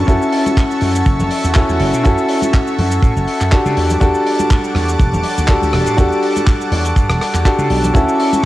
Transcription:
Already playing: analog synth pad A5 C#6
0.07 slap bass F#2, grand piano C#4 E4 F#4 A4, analog synth pad F#4 E5, kick, closed hi-hat, cabasa
0.22 cabasa
0.32 open hi-hat
0.46 closed hi-hat, high conga, cabasa
0.57 kick, clap, closed hi-hat, cabasa
0.71 cabasa
0.81 slap bass F#2, open hi-hat, high conga
0.95 closed hi-hat, cabasa
1.06 slap bass F#1, kick, closed hi-hat, cabasa
1.20 slap bass F#1, low conga, cabasa
1.31 open hi-hat
1.44 slap bass E2, closed hi-hat, cabasa
1.54 grand piano C#4 E4 F#4 A4, kick, clap, closed hi-hat, cabasa
1.69 slap bass E2, high conga, cabasa
1.80 slap bass F#1, open hi-hat
1.93 slap bass B2, closed hi-hat, cabasa
2.04 slap bass F#2, grand piano C#4 E4 F#4 A4, kick, closed hi-hat, cabasa
2.18 cabasa
2.28 open hi-hat
2.42 closed hi-hat, high conga, cabasa
2.54 kick, clap, closed hi-hat, cabasa
2.67 cabasa
2.78 slap bass F#2, open hi-hat, high conga, low conga
2.91 closed hi-hat, cabasa
3.02 slap bass A2, kick, closed hi-hat, cabasa
3.16 slap bass F#1, cabasa
3.28 open hi-hat
3.41 slap bass F#2, clap, closed hi-hat, cabasa
3.51 grand piano D4 F#4 G4 A4, kick, clap, closed hi-hat, cabasa
3.66 slap bass C#3, high conga, cabasa
3.77 slap bass E2, analog synth pad G3 F#5 A5 D6, open hi-hat
3.90 closed hi-hat, low conga, cabasa
4.00 slap bass E2, grand piano D4 F#4 G4 A4, kick, closed hi-hat, cabasa
4.15 cabasa
4.27 open hi-hat
4.39 closed hi-hat, high conga, cabasa
4.51 kick, clap, closed hi-hat, cabasa
4.64 cabasa
4.75 slap bass E2, cross-stick, open hi-hat, high conga
4.88 closed hi-hat, cabasa
4.99 slap bass E1, kick, closed hi-hat, cabasa
5.13 slap bass E1, low conga, cabasa
5.23 open hi-hat
5.38 slap bass D2, closed hi-hat, cabasa
5.48 grand piano D4 F#4 G4 A4, kick, clap, closed hi-hat, cabasa
5.62 slap bass D2, high conga, cabasa
5.73 slap bass E1, cross-stick, open hi-hat
5.86 slap bass A2, closed hi-hat, cabasa
5.97 slap bass E2, grand piano D4 F#4 G4 A4, kick, closed hi-hat, cabasa
6.12 cabasa
6.23 open hi-hat
6.36 closed hi-hat, high conga, cabasa
6.47 kick, clap, closed hi-hat, cabasa
6.61 cabasa
6.72 slap bass E2, open hi-hat, high conga
6.85 closed hi-hat, cabasa
6.96 slap bass G2, kick, closed hi-hat, cabasa
7.10 slap bass E1, cross-stick, cabasa
7.21 cross-stick, open hi-hat
7.34 slap bass E2, clap, closed hi-hat, cabasa
7.45 grand piano D4 F#4 G4 A4, kick, clap, closed hi-hat, cabasa
7.59 slap bass C#3, high conga, cabasa
7.70 slap bass B1, open hi-hat
7.84 closed hi-hat, low conga, cabasa
7.94 slap bass D2, grand piano C#4 E4 F#4 A4, analog synth pad F#4 E5 C#6 D6, kick, closed hi-hat, cabasa
8.08 cabasa
8.20 open hi-hat
8.33 closed hi-hat, high conga, cabasa

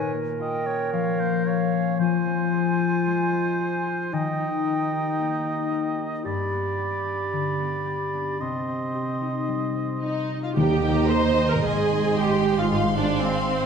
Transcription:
Already playing: harp A#2, clarinet A#4, oboe C#5, flute G#5
0.13 harp A#3
0.40 harp F4, oboe D#5, flute G5
0.66 harp C#4, oboe C#5
0.92 harp F3, oboe C#5, flute F5
1.20 harp A#3, oboe C5
1.46 harp F4, oboe C#5, flute F5
1.72 harp C#4
1.99 harp F3, clarinet F4, oboe C5, flute G#5
2.26 harp C4
2.53 harp G#4
2.79 harp F4
3.06 harp G#3
3.33 harp C4
3.60 harp G#4
3.86 harp F4
4.12 harp D#3, clarinet D#4, oboe D#5, flute G5
4.40 harp D#4
4.66 harp A#4
4.93 harp G4
5.19 harp A#3
5.45 harp D#4
5.72 harp A#4
5.98 harp G4
6.25 harp G2, clarinet G4, oboe D5, flute B5
6.52 harp B3
6.78 harp G4
7.05 harp D4
7.33 harp D3
7.59 harp B3
7.86 harp G4
8.14 harp D4
8.40 harp C3, clarinet C4, oboe D#5, flute C6
8.68 harp C4
8.95 harp G4
9.21 harp D#4
9.48 harp G3
9.75 harp C4
10.02 viola section D#4, harp G4, violin section D#5
10.29 harp D#4
10.43 viola section F4, violin section F5
10.56 cello section D#2, double bass section D#2, harp D#3, timpani D#3, viola section G4, violin section D#5 G5 A#5
10.70 harp D#4
10.83 harp A#4
10.96 harp D#5
11.09 viola section C5, harp G5, violin section C6
11.22 harp A#5
11.36 harp G5
11.49 viola section A#4, harp D#5, violin section A#5
11.63 double bass section G#1, harp G#2, cello section G#2, viola section G#4, violin section G#5 C6
11.76 harp G#3
11.90 harp C5
12.04 harp G#4
12.17 viola section G4, harp D#5, violin section G5
12.30 harp C6
12.44 harp D#5
12.57 viola section F4, harp G#4, violin section F5
12.70 harp G#2, viola section F4, violin section F5
12.84 harp G#3
12.97 viola section D4, harp C5, violin section D5
13.10 harp G#4
13.24 viola section C4, violin section C5, harp F5
13.37 harp C6
13.50 harp F5

